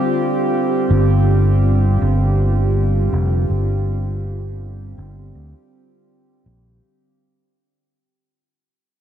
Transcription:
Already playing: D3 G3 C4 F4 G4
0.91 G1
2.02 G1
3.13 F1
3.50 G1
4.98 G1
5.35 D2
6.46 A#1

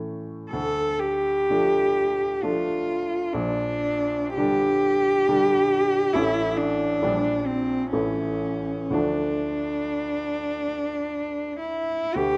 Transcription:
Already playing: A2 E3 A3 C#4
0.51 D2 A4
1.00 G4
1.50 F3 A3 D4
2.43 F3 A3 D4 F4
3.33 A#1 D4
4.35 D3 G3 D4 G4
5.28 D3 G3 D4
6.13 A1 E3 A3 C#4 E4
6.58 D4
7.02 A#1 G3 D4
7.46 C4
7.92 A1 E3 A3 C#4 E4
8.90 D2 F3 A3 D4
11.60 E4
12.15 D2 G4

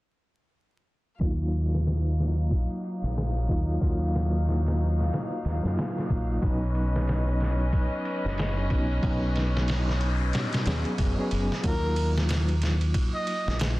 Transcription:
1.20 D#2 F#3 A#3 D#4 F4 F5, kick, ride
1.53 ride
1.74 snare
1.86 snare, ride
2.05 ride
2.18 snare, ride
2.38 ride
2.51 kick, ride
2.84 ride
3.03 A#1, snare
3.16 snare, ride
3.49 D#2 F#3 A#3 D#4 F4, kick, ride
3.80 D#2 F#3 A#3 D#4 F4, kick, ride
4.14 snare, ride
4.34 ride
4.47 snare, ride
4.66 snare, ride
4.80 ride
4.99 snare, ride
5.12 snare, ride
5.32 ride
5.45 D#2, snare, ride
5.63 F#2 F#3 A#3 D#4 F4, snare
5.77 snare, ride
5.98 snare
6.10 A#1, kick, ride
6.41 B1 F#3 B3 C#4 D#4 B4 D#5, kick, ride
6.75 ride
6.96 snare
7.07 snare, ride
7.27 ride
7.40 snare, ride
7.60 ride
7.73 kick, ride
8.05 ride
8.25 F#1, snare
8.38 snare, ride
8.70 B1 F#3 B3 C#4 D#4, kick, ride
9.02 B1 F#3 B3 C#4 D#4, kick, ride, noise sweep
9.36 snare, ride
9.57 snare
9.68 snare, ride
9.89 snare
10.01 ride
10.33 snare, ride
10.53 snare, ride
10.66 D#2 F#3 B3 C#4 G#4, snare, ride
10.85 ride
10.98 F#1, kick, ride
11.18 F#3 B3 C#4 G#4
11.31 F#1, ride
11.52 snare
11.63 D#2 F#3 A#3 D#4 F4 A#4, kick, ride
11.96 ride
12.18 snare
12.29 snare, ride
12.49 ride
12.62 snare, ride
12.81 ride
12.94 kick, ride
13.16 D#5
13.27 ride
13.47 A#1, snare
13.59 snare, ride

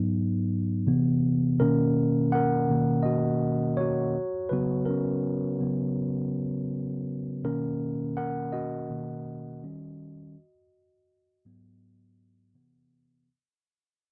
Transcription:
Already playing: G#2 F#3 B3 D#4
0.87 C3 E3 B3
1.60 B2 D#3 A#3 C#4 A#4
2.32 A#4 F#5
2.70 B2 D#3 A#3
3.03 F#4 D#5
3.77 F#4 C#5
4.49 C#3 F#3 B3 F#4 B4
4.86 C#4 A#4
5.60 C#3 F#3 B3
7.44 B2 D#3 A#3 C#4 A#4
8.17 A#4 F#5
8.52 F#4 D#5
8.89 B2 D#3 A#3
9.63 D#3 G3 C#4
11.45 G#2 F#3 B3
12.54 C3 E3 B3

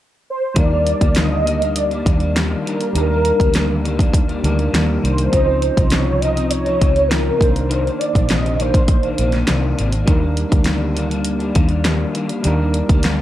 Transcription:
0.30 C5
0.54 D#2 D#3 G3 A#3 D4 D#4, kick, closed hi-hat
0.58 A#4 D5
0.70 G3 A#3 D4
0.87 closed hi-hat
1.01 D2 G3 A#3 D4, kick, closed hi-hat
1.15 D#3 G3 A#3 D4 D#5, snare, closed hi-hat
1.46 D#3 G3 A#3 D4, closed hi-hat
1.61 G3 A#3 D4, closed hi-hat
1.76 D5, closed hi-hat
1.91 G3 A#3 D4, closed hi-hat
2.05 D#2 D#3 G3 A#3 D4, kick, closed hi-hat
2.20 G3 A#3 D4, closed hi-hat
2.35 D#3 G3 A#3 D4, snare, closed hi-hat
2.65 D#3 G3 A#3 D4 A#4, closed hi-hat
2.80 G3 A#3 D4, closed hi-hat
2.93 D#2 D#3 G3 D4 D#4, closed hi-hat
2.97 A#3 D4 A#4
3.11 G3 A#3 D4
3.25 closed hi-hat
3.39 D2 G3 A#3 D4, kick, closed hi-hat
3.54 D#3 G3 A#3 D4, snare, closed hi-hat
3.84 D#3 G3 A#3 D4, closed hi-hat
3.99 G3 A#3 D4, kick, closed hi-hat
4.14 kick, closed hi-hat
4.28 G3 A#3 D4, closed hi-hat
4.43 D2 D#3 G3 A#3 D4 D#4 A#4, closed hi-hat
4.59 G3 A#3 D4, closed hi-hat
4.73 D#2 D#3 G3 A#3 D4, snare, closed hi-hat
5.02 C2 D#3 G3 A#3 D4 C5, closed hi-hat
5.18 closed hi-hat
5.31 C#2 C#3 F3 C4 C#4 D#4, kick, closed hi-hat
5.37 D#5
5.48 F3 C4 D#4
5.62 closed hi-hat
5.77 C2 F3 C4 D#4, kick, closed hi-hat
5.90 C#3 F3 C4 C#5, snare, closed hi-hat
5.95 D#4
6.20 C#3 F3 C4 D#5, closed hi-hat
6.25 D#4
6.36 F3 C4 D#4, closed hi-hat
6.50 C#5, closed hi-hat
6.65 F3 C4 D#4, closed hi-hat
6.79 C#2 C#3 F3 C4 D#4, kick, closed hi-hat
6.94 F3 C4 D#4, closed hi-hat
7.08 C#3 F3 C4 D#4 A#4, snare, closed hi-hat
7.38 C2 C3 D#3 A#3 D4 D#4, kick, closed hi-hat
7.43 D4 C5
7.56 closed hi-hat
7.69 C3 D#3 A#3 D4 C5, closed hi-hat
7.85 D#3 A#3 D4, closed hi-hat
7.99 D5, closed hi-hat
8.13 A#1 D#3 A#3 D4, kick, closed hi-hat
8.29 C3 D#3 A#3 D4 D#5, snare, closed hi-hat
8.46 closed hi-hat
8.59 C3 D#3 A#3 D4 C5, closed hi-hat
8.73 D#3 A#3 D4, kick, closed hi-hat
8.88 kick, closed hi-hat
9.03 D#3 A#3 D4, closed hi-hat
9.18 A#1 C3 D#3 A#3 D4, closed hi-hat
9.32 D#3 A#3 D4, snare, closed hi-hat
9.47 C2 C3 D#3 A#3 D4, snare, closed hi-hat
9.78 G#1 C3 D#3 A#3 D4, closed hi-hat
9.91 D#3 A#3 D4, closed hi-hat
10.06 D#2 D#3 G3 A#3 D4 D#4, kick, closed hi-hat
10.11 A#4
10.21 G3 A#3 D4
10.37 closed hi-hat
10.49 D2 G3 A#3 D4, kick, closed hi-hat
10.64 D#3 G3 A#3 D4, snare, closed hi-hat
10.94 D#3 G3 A#3 D4, closed hi-hat
11.09 G3 A#3 D4, closed hi-hat
11.25 closed hi-hat
11.39 G3 A#3 D4, closed hi-hat
11.54 D#2 D#3 G3 A#3 D4, kick, closed hi-hat
11.68 G3 A#3 D4, closed hi-hat
11.84 D#3 G3 A#3 D4, snare, closed hi-hat
12.14 D#3 G3 A#3 D4, closed hi-hat
12.29 G3 A#3 D4, closed hi-hat
12.43 D#2 D#3 G3 A#3 D4 D#4, closed hi-hat
12.47 A#4
12.59 G3 A#3 D4
12.74 closed hi-hat
12.89 D2 G3 A#3 D4, kick, closed hi-hat
13.03 D#3 G3 A#3 D4, snare, closed hi-hat

